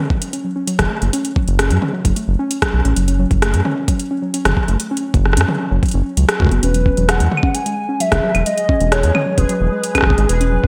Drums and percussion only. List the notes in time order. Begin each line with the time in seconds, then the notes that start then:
0.10 kick
0.22 closed hi-hat
0.33 closed hi-hat
0.67 closed hi-hat
0.79 kick, cross-stick, closed hi-hat, high tom
1.02 closed hi-hat
1.13 closed hi-hat
1.25 closed hi-hat
1.36 kick
1.48 closed hi-hat
1.59 cross-stick, closed hi-hat
1.70 closed hi-hat
1.82 high tom
2.05 kick, closed hi-hat
2.16 closed hi-hat
2.51 closed hi-hat
2.62 kick, cross-stick, closed hi-hat
2.85 closed hi-hat
2.96 closed hi-hat
3.08 closed hi-hat
3.31 kick, closed hi-hat
3.42 cross-stick, closed hi-hat
3.54 closed hi-hat
3.65 high tom
3.88 kick, closed hi-hat
3.99 closed hi-hat
4.34 closed hi-hat
4.45 cross-stick, closed hi-hat, high tom
4.57 kick
4.68 closed hi-hat
4.80 closed hi-hat
4.97 closed hi-hat
5.14 kick, closed hi-hat
5.25 cross-stick
5.33 cross-stick, closed hi-hat
5.41 cross-stick
5.48 high tom
5.83 kick, closed hi-hat
5.86 closed hi-hat
5.88 closed hi-hat
5.91 closed hi-hat
6.17 closed hi-hat
6.29 cross-stick, closed hi-hat
6.40 kick
6.42 kick
6.45 kick
6.47 kick
6.49 kick, closed hi-hat
6.63 closed hi-hat
6.74 closed hi-hat
6.86 kick
6.97 closed hi-hat
7.09 cross-stick, closed hi-hat
7.20 closed hi-hat
7.32 high tom
7.37 claves
7.43 kick
7.55 closed hi-hat
7.66 closed hi-hat
8.00 closed hi-hat
8.12 kick, cross-stick, closed hi-hat, high tom
8.35 closed hi-hat, claves
8.46 closed hi-hat
8.58 closed hi-hat
8.69 kick
8.80 closed hi-hat
8.92 cross-stick, closed hi-hat
9.03 closed hi-hat
9.15 high tom, claves
9.38 kick, closed hi-hat
9.49 closed hi-hat
9.84 closed hi-hat
9.95 kick, cross-stick, closed hi-hat, claves
9.98 cross-stick
10.01 kick, cross-stick
10.04 cross-stick
10.10 kick
10.18 closed hi-hat
10.29 closed hi-hat
10.41 closed hi-hat
10.64 kick